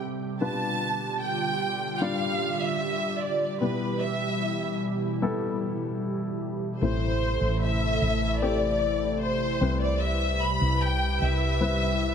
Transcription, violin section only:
0.42 1.18 A5 medium
1.22 1.94 G5 medium
1.95 2.02 G5 medium
2.01 2.61 F5 medium
2.61 3.21 E5 medium
3.20 3.61 D5 medium
3.61 3.98 B4 medium
4.00 4.81 E5 medium
6.82 7.58 C5 medium
7.63 8.38 E5 medium
8.42 9.22 D5 medium
9.22 9.78 C5 medium
9.82 10.01 D5 medium
10.02 10.41 E5 medium
10.42 10.82 B5 medium
10.82 11.21 G5 medium
11.22 12.15 E5 medium

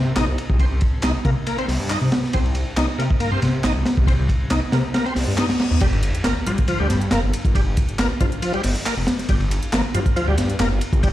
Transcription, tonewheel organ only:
0.17 0.25 D#4 medium
0.60 0.65 C4 medium
1.03 1.12 D#4 medium
1.25 1.30 A#3 medium
1.47 1.57 A#3 medium
1.58 1.66 C4 medium
1.90 1.99 D#4 medium
2.34 2.39 C4 medium
2.77 2.86 D#4 medium
2.99 3.04 A#3 medium
3.20 3.31 A#3 medium
3.32 3.40 C4 medium
3.64 3.73 D#4 medium
4.07 4.13 C4 medium
4.51 4.60 D#4 medium
4.73 4.78 A#3 medium
4.94 5.05 A#3 medium
5.06 5.14 C4 medium
5.38 5.47 D#4 medium
5.81 5.87 G3 medium
6.25 6.34 A#3 medium
6.47 6.52 F3 medium
6.68 6.79 F3 medium
6.80 6.88 G3 medium
7.12 7.21 A#3 medium
7.55 7.61 G3 medium
7.99 8.08 A#3 medium
8.21 8.26 F3 medium
8.42 8.53 F3 medium
8.54 8.62 G3 medium
8.86 8.95 A#3 medium
9.29 9.35 G3 medium
9.73 9.82 A#3 medium
9.94 10.00 F3 medium
10.16 10.27 F3 medium
10.28 10.36 G3 medium
10.60 10.69 A#3 medium
11.03 11.08 G3 medium

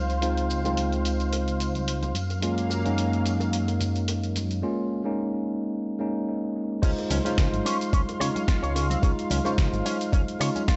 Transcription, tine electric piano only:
0.00 0.19 G#3 medium
0.00 0.19 C4 medium
0.00 0.19 D#4 medium
0.00 0.20 F4 medium
0.21 0.61 G#3 medium
0.21 0.61 C4 medium
0.21 0.61 D#4 medium
0.21 0.61 F4 medium
0.64 2.13 G#3 medium
0.64 2.13 C4 medium
0.64 2.14 D#4 medium
0.64 2.14 F4 medium
2.42 2.81 G#3 medium
2.42 2.81 A#3 medium
2.42 2.82 C#4 medium
2.42 2.82 F4 medium
2.84 4.59 G#3 medium
2.84 4.60 A#3 medium
2.84 4.60 C#4 medium
2.84 4.60 D#4 medium
4.62 5.02 G#3 medium
4.62 5.02 A#3 medium
4.62 5.02 C#4 medium
4.62 5.02 F4 medium
5.04 5.97 G#3 medium
5.04 5.98 A#3 medium
5.04 5.98 C#4 medium
5.04 5.98 D#4 medium
5.99 6.79 G#3 medium
5.99 6.79 A#3 medium
5.99 6.80 C#4 medium
5.99 6.80 D#4 medium
6.82 7.21 G#3 medium
6.82 7.22 D#4 medium
6.82 7.22 F4 medium
6.82 7.21 C5 medium
7.24 8.17 G#3 medium
7.24 8.18 D#4 medium
7.24 8.18 F4 medium
7.24 8.18 C5 medium
8.19 8.99 G#3 medium
8.19 9.00 D#4 medium
8.19 9.00 F4 medium
9.02 9.42 G#3 medium
9.02 9.42 D#4 medium
9.02 9.42 F4 medium
9.44 10.37 G#3 medium
9.44 10.38 D#4 medium
9.44 10.38 F4 medium
9.44 10.38 C5 medium
10.40 10.76 G#3 medium
10.40 10.76 D#4 medium
10.40 10.76 F4 medium

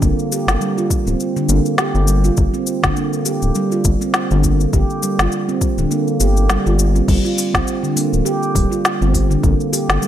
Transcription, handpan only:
0.02 0.31 A#3 medium
0.32 0.60 G4 medium
0.61 0.76 G3 medium
0.78 0.90 F4 medium
1.07 1.19 C4 medium
1.36 1.44 D3 medium
1.49 1.77 A#3 medium
1.79 2.07 G4 medium
2.08 2.23 G3 medium
2.24 2.37 F4 medium
2.54 2.66 C4 medium
2.83 2.91 D3 medium
2.96 3.25 A#3 medium
3.25 3.54 G4 medium
3.56 3.71 G3 medium
3.72 3.84 F4 medium
4.01 4.13 C4 medium
4.31 4.38 D3 medium
4.44 4.72 A#3 medium
4.74 5.01 G4 medium
5.03 5.18 G3 medium
5.19 5.31 F4 medium
5.49 5.61 C4 medium
5.78 5.86 D3 medium
5.91 6.19 A#3 medium
6.20 6.48 G4 medium
6.50 6.65 G3 medium
6.66 6.78 F4 medium
6.95 7.08 C4 medium
7.08 7.23 G3 medium
7.25 7.37 F4 medium
7.54 7.66 C4 medium
7.83 7.91 D3 medium
7.96 8.25 A#3 medium
8.25 8.54 G4 medium
8.55 8.70 G3 medium
8.72 8.84 F4 medium
9.01 9.14 C4 medium
9.30 9.38 D3 medium
9.43 9.72 A#3 medium
9.73 10.01 G4 medium
10.02 10.08 G3 medium

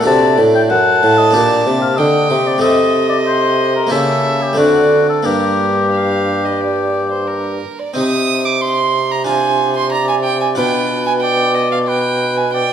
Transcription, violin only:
0.06 0.71 D5 medium
0.70 1.99 A5 medium
1.98 2.62 G5 medium
2.62 3.93 D#5 medium
3.91 4.59 E5 medium
4.57 5.25 D5 medium
5.25 5.85 A#4 soft
5.93 6.47 F5 medium
6.45 6.63 D#5 soft
6.61 7.11 D5 medium
7.12 7.29 C5 soft
7.28 7.81 A#4 soft
7.79 7.95 D5 soft
7.96 8.47 D#6 medium
8.45 8.63 D6 medium
8.61 9.13 C6 medium
9.11 9.26 A#5 medium
9.27 9.75 G#5 medium
9.77 9.92 C6 medium
9.92 10.08 A#5 medium
10.09 10.15 G#5 medium
10.24 10.40 G5 medium
10.41 10.48 G#5 medium
10.57 11.05 G5 medium
11.06 11.13 G#5 medium
11.21 11.56 G5 medium
11.55 11.71 D#5 medium
11.72 11.78 F5 medium
11.87 12.39 G5 medium
12.37 12.53 G#5 medium
12.53 12.73 G5 medium

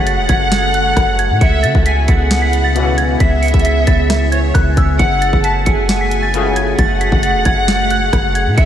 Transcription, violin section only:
0.00 1.37 F#5 loud
1.41 1.83 E5 loud
1.86 2.07 G#5 medium
2.08 3.16 F#5 loud
3.20 4.28 E5 loud
4.32 4.54 C#5 medium
4.99 5.41 F#5 loud
5.44 5.65 A5 medium
5.66 6.74 G#5 medium
6.79 8.54 F#5 loud
8.58 8.65 E5 loud

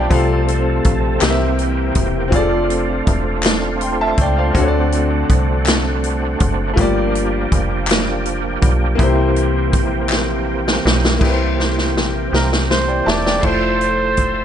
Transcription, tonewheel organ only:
0.00 1.18 F3 medium
0.10 1.20 A3 medium
0.10 6.72 C4 medium
0.10 1.21 A4 medium
1.21 2.31 E3 medium
1.21 2.31 A#3 medium
1.21 2.32 G4 medium
2.32 6.73 A3 medium
2.32 6.72 D4 medium
2.32 4.52 F4 medium
4.53 6.74 F#4 medium
6.76 8.96 F3 medium
6.76 11.16 A#3 medium
6.76 8.96 D4 medium
6.76 8.95 G4 medium
8.96 11.17 E3 medium
8.96 11.17 C4 medium
8.96 11.17 G4 medium
11.20 13.41 E3 medium
11.20 13.41 A#3 soft
11.20 13.41 C4 soft
11.20 13.40 G4 medium
13.40 14.45 F3 medium
13.40 14.45 A4 medium
13.40 14.45 C5 medium
13.40 14.45 E5 medium

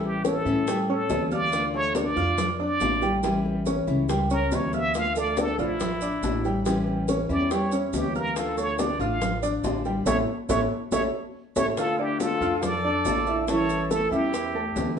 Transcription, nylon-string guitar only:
0.00 0.45 E3 medium
0.00 0.45 G3 medium
0.00 0.45 C#4 medium
0.00 0.44 E4 medium
0.45 0.66 G3 medium
0.45 0.67 C#4 medium
0.45 0.66 E4 medium
0.67 muted nylon-string guitar stroke medium
1.10 1.52 E3 soft
1.10 1.53 G3 medium
1.10 1.53 C#4 medium
1.10 1.53 E4 medium
1.52 2.16 D3 medium
1.52 2.18 A3 medium
1.52 2.17 D4 medium
1.52 2.15 F4 medium
2.16 2.37 A3 medium
2.16 2.38 D4 medium
2.16 2.37 F4 medium
2.38 muted nylon-string guitar stroke medium
2.81 3.23 D3 soft
2.81 3.23 A3 medium
2.81 3.24 D4 medium
2.81 3.24 F4 medium
3.23 3.87 E3 medium
3.23 3.87 G3 medium
3.23 3.87 C#4 medium
3.23 3.86 E4 medium
3.87 4.08 G3 medium
3.87 4.09 C#4 medium
3.87 4.08 E4 medium
4.09 muted nylon-string guitar stroke medium
4.51 4.94 E3 soft
4.51 4.94 G3 medium
4.51 4.94 C#4 medium
4.51 4.95 E4 medium
4.94 5.58 D3 medium
4.94 5.61 A3 medium
4.94 5.58 D4 medium
4.94 5.58 F4 medium
5.59 5.80 A3 medium
5.59 5.80 D4 medium
5.59 5.79 F4 medium
5.80 muted nylon-string guitar stroke medium
6.23 6.65 D3 medium
6.23 6.65 A3 medium
6.23 6.66 D4 medium
6.65 7.29 E3 medium
6.65 7.29 G3 medium
6.65 7.29 C#4 medium
6.65 7.28 E4 medium
7.29 7.50 G3 medium
7.29 7.50 C#4 medium
7.29 7.50 E4 medium
7.51 muted nylon-string guitar stroke medium
7.93 8.35 E3 medium
7.93 8.36 G3 medium
7.93 8.36 C#4 medium
7.93 8.36 E4 medium
8.36 8.99 D3 medium
8.36 9.02 A3 medium
8.36 9.00 D4 medium
8.36 8.98 F4 medium
9.00 9.21 A3 medium
9.00 9.21 D4 medium
9.00 9.20 F4 medium
9.21 muted nylon-string guitar stroke medium
9.63 10.06 D3 medium
9.63 10.05 A3 soft
9.63 10.06 D4 medium
9.63 10.06 F4 medium
10.06 10.20 A3 medium
10.06 10.20 C#4 loud
10.06 10.20 E4 loud
10.49 10.63 A3 medium
10.49 10.63 C#4 medium
10.49 10.63 E4 medium
10.92 11.06 A3 medium
10.92 11.06 C#4 loud
10.92 11.06 E4 medium
11.56 11.70 A3 medium
11.56 11.70 C#4 medium
11.56 11.70 E4 medium
11.77 12.40 D3 medium
11.77 12.43 A3 medium
11.77 12.41 D4 medium
11.77 12.40 F4 medium
12.41 12.62 A3 medium
12.41 12.62 D4 medium
12.41 12.62 F4 medium
12.63 muted nylon-string guitar stroke medium
13.04 13.47 D3 medium
13.04 13.47 A3 medium
13.04 13.48 D4 medium
13.04 13.48 F4 medium
13.47 14.11 E3 medium
13.47 14.11 G3 medium
13.47 14.11 C#4 medium
13.47 14.10 E4 medium
14.11 14.32 G3 medium
14.11 14.33 C#4 medium
14.11 14.32 E4 medium
14.33 muted nylon-string guitar stroke medium
14.75 14.99 E3 medium
14.75 14.99 G3 medium
14.75 14.99 C#4 medium
14.75 14.99 E4 medium

